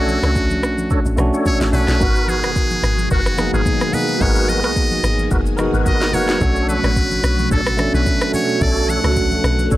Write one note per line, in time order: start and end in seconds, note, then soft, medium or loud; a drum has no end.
0.00 0.18 B1 loud
0.00 1.17 A3 medium
0.00 1.18 C#4 medium
0.00 0.19 D4 loud
0.00 1.19 D4 medium
0.00 1.15 F#4 medium
0.00 1.20 F#4 medium
0.00 0.20 A4 medium
0.00 0.20 C#5 loud
0.08 high conga medium
0.08 shaker medium
0.23 0.64 C#2 medium
0.23 0.31 D4 medium
0.23 0.31 A4 medium
0.23 0.31 C#5 medium
0.23 cross-stick medium
0.23 shaker soft
0.35 kick loud
0.35 shaker medium
0.50 high conga medium
0.50 shaker soft
0.63 0.87 B1 medium
0.63 cross-stick medium
0.63 shaker medium
0.78 high conga medium
0.78 shaker medium
0.90 1.00 D4 medium
0.90 1.00 A4 medium
0.90 1.01 C#5 loud
0.90 kick loud
0.90 low conga medium
0.90 shaker medium
1.06 1.17 A1 medium
1.06 shaker medium
1.17 1.31 B1 loud
1.17 1.63 A3 medium
1.17 1.63 C#4 medium
1.17 1.64 D4 medium
1.17 1.64 F#4 loud
1.17 cross-stick medium
1.17 high conga medium
1.17 shaker medium
1.33 1.70 D4 medium
1.33 1.70 A4 medium
1.33 1.70 C#5 medium
1.33 shaker medium
1.46 1.59 C#5 medium
1.46 kick loud
1.46 low conga medium
1.46 shaker medium
1.61 1.72 A1 medium
1.61 snare medium
1.61 high conga medium
1.61 shaker medium
1.72 1.87 B1 loud
1.72 1.95 A3 medium
1.72 1.96 C#4 medium
1.72 1.99 D4 medium
1.72 1.96 D4 medium
1.72 1.97 F#4 medium
1.72 1.99 A4 medium
1.72 2.30 B4 loud
1.72 1.99 C#5 medium
1.72 open hi-hat medium
1.72 high conga medium
1.72 low conga medium
1.72 shaker medium
1.88 1.99 B1 loud
1.88 snare medium
1.88 shaker soft
1.99 2.45 G#1 loud
1.99 6.37 B2 medium
1.99 6.37 D#3 medium
1.99 6.37 F#3 medium
1.99 6.37 G#3 medium
1.99 2.89 B3 medium
1.99 2.90 D#4 medium
1.99 2.40 F#4 loud
1.99 4.19 F#4 loud
1.99 2.90 F#4 medium
1.99 2.89 A#4 medium
1.99 2.40 A#4 medium
1.99 2.40 B4 loud
1.99 kick loud
1.99 low conga medium
1.99 shaker medium
2.16 shaker medium
2.28 3.11 G#4 loud
2.28 high conga medium
2.28 shaker medium
2.43 2.79 F#1 medium
2.43 2.51 F#4 medium
2.43 2.51 A#4 medium
2.43 2.52 B4 medium
2.43 cross-stick medium
2.43 shaker soft
2.56 kick loud
2.56 shaker medium
2.71 high conga medium
2.71 shaker soft
2.83 3.08 G#1 loud
2.83 cross-stick medium
2.83 shaker medium
2.98 high conga medium
2.98 shaker medium
3.11 3.49 F#1 loud
3.11 3.21 F#4 medium
3.11 3.51 F#4 loud
3.11 3.21 A#4 medium
3.11 3.21 B4 loud
3.11 kick loud
3.11 low conga medium
3.11 shaker medium
3.26 cross-stick medium
3.26 shaker medium
3.37 3.83 A#3 medium
3.37 3.83 B3 medium
3.37 3.84 D#4 medium
3.37 3.84 G#4 medium
3.37 cross-stick loud
3.37 high conga medium
3.37 shaker medium
3.53 3.65 G#1 medium
3.53 3.61 F#4 medium
3.53 3.95 G#4 medium
3.53 3.62 A#4 medium
3.53 3.62 B4 medium
3.53 shaker medium
3.66 kick loud
3.66 low conga medium
3.66 shaker medium
3.81 cross-stick loud
3.81 shaker medium
3.92 4.15 A#3 medium
3.92 4.16 B3 medium
3.92 4.16 D#4 medium
3.92 4.17 G#4 medium
3.92 4.23 B4 loud
3.92 open hi-hat medium
3.92 high conga medium
3.92 low conga medium
3.92 shaker medium
4.08 shaker soft
4.19 4.65 G#1 loud
4.19 5.09 B3 medium
4.19 5.10 D#4 medium
4.19 4.60 F#4 loud
4.19 6.39 G#4 medium
4.19 5.10 G#4 medium
4.19 5.09 A#4 medium
4.19 4.60 A#4 medium
4.19 4.60 B4 loud
4.19 4.51 C#5 loud
4.19 kick loud
4.19 low conga medium
4.19 shaker medium
4.36 shaker medium
4.48 5.31 D#5 loud
4.48 high conga medium
4.48 shaker medium
4.63 4.99 B1 medium
4.63 4.71 F#4 medium
4.63 4.72 A#4 medium
4.63 4.72 B4 medium
4.63 cross-stick medium
4.63 shaker soft
4.76 kick loud
4.76 shaker medium
4.91 high conga medium
4.91 shaker medium
5.03 5.28 G#1 medium
5.03 cross-stick medium
5.03 shaker medium
5.19 high conga medium
5.19 shaker medium
5.31 5.69 F#1 loud
5.31 5.41 F#4 medium
5.31 5.41 A#4 medium
5.31 5.41 B4 loud
5.31 kick loud
5.31 low conga medium
5.31 shaker medium
5.46 shaker medium
5.57 6.03 B3 medium
5.57 6.04 D#4 medium
5.57 6.05 F#4 loud
5.57 6.03 A#4 medium
5.57 cross-stick medium
5.57 high conga medium
5.57 shaker medium
5.74 6.15 G#1 loud
5.74 6.11 F#4 medium
5.74 6.11 A#4 medium
5.74 6.11 B4 medium
5.74 shaker medium
5.86 6.15 D#5 loud
5.86 kick loud
5.86 low conga medium
5.86 shaker medium
6.01 snare medium
6.01 shaker medium
6.12 6.38 F#1 loud
6.12 6.35 A#3 medium
6.12 6.36 B3 medium
6.12 6.36 D#4 medium
6.12 6.39 F#4 medium
6.12 6.37 F#4 medium
6.12 6.39 A#4 medium
6.12 6.39 B4 medium
6.12 6.68 C#5 loud
6.12 open hi-hat medium
6.12 high conga medium
6.12 low conga medium
6.12 shaker medium
6.28 snare medium
6.28 shaker soft
6.40 6.79 B1 loud
6.40 9.77 B2 medium
6.40 9.77 F#3 medium
6.40 7.29 A3 medium
6.40 9.77 A3 medium
6.40 7.29 C#4 medium
6.40 6.80 D4 medium
6.40 7.30 D4 medium
6.40 9.77 F#4 medium
6.40 7.31 F#4 medium
6.40 6.80 A4 medium
6.40 8.59 C#5 medium
6.40 6.80 C#5 loud
6.40 kick loud
6.40 low conga medium
6.40 shaker medium
6.56 shaker soft
6.69 7.47 B4 loud
6.69 high conga medium
6.69 shaker loud
6.84 7.19 A1 medium
6.84 6.92 D4 medium
6.84 6.92 A4 medium
6.84 6.92 C#5 medium
6.84 cross-stick medium
6.84 shaker soft
6.96 kick loud
6.96 shaker medium
7.11 high conga medium
7.11 shaker medium
7.24 7.48 B1 medium
7.24 cross-stick medium
7.24 shaker medium
7.39 high conga medium
7.39 shaker medium
7.51 7.89 A1 loud
7.51 7.61 D4 medium
7.51 7.61 A4 medium
7.51 7.91 A4 loud
7.51 7.61 C#5 loud
7.51 kick loud
7.51 low conga medium
7.51 shaker medium
7.66 cross-stick loud
7.66 shaker medium
7.77 8.23 A3 medium
7.77 8.24 C#4 medium
7.77 8.24 D4 medium
7.77 8.25 A4 medium
7.77 cross-stick medium
7.77 high conga medium
7.77 shaker medium
7.94 8.05 B1 loud
7.94 8.02 D4 medium
7.94 8.02 A4 medium
7.94 8.31 B4 loud
7.94 8.02 C#5 medium
7.94 shaker medium
8.06 kick loud
8.06 low conga medium
8.06 shaker medium
8.21 cross-stick loud
8.21 shaker medium
8.32 8.56 A3 medium
8.32 8.56 C#4 medium
8.32 8.57 D4 medium
8.32 8.57 F#4 medium
8.32 8.64 C#5 loud
8.32 open hi-hat medium
8.32 high conga medium
8.32 low conga medium
8.32 shaker medium
8.48 shaker soft
8.60 8.99 B1 loud
8.60 9.49 A3 medium
8.60 9.77 B3 medium
8.60 9.50 C#4 medium
8.60 9.00 D4 medium
8.60 9.50 D4 medium
8.60 9.00 A4 medium
8.60 9.51 A4 medium
8.60 9.01 C#5 loud
8.60 8.91 D5 loud
8.60 kick loud
8.60 low conga medium
8.60 shaker medium
8.76 shaker soft
8.89 9.72 F#5 loud
8.89 high conga medium
8.89 shaker medium
9.04 9.39 C#2 medium
9.04 9.12 D4 medium
9.04 9.12 A4 medium
9.04 9.12 C#5 medium
9.04 cross-stick medium
9.04 shaker soft
9.16 kick loud
9.16 shaker medium
9.31 high conga medium
9.31 shaker medium
9.44 9.68 B1 loud
9.44 cross-stick loud
9.44 shaker medium
9.59 high conga medium
9.59 shaker medium
9.71 9.77 A1 loud
9.71 9.77 D4 medium
9.71 9.77 A4 medium
9.71 9.77 C#5 loud
9.71 kick loud
9.71 low conga medium
9.71 shaker medium